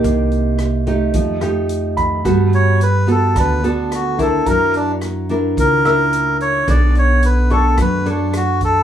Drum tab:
HH |xxxxxxxx|xxxxxxxx|xxxxxxxx|xxxxxxxx|
SD |--r--r--|r---r-r-|--r--r--|r---r-r-|
BD |o---o--o|o---o--o|o---o---|o---o--o|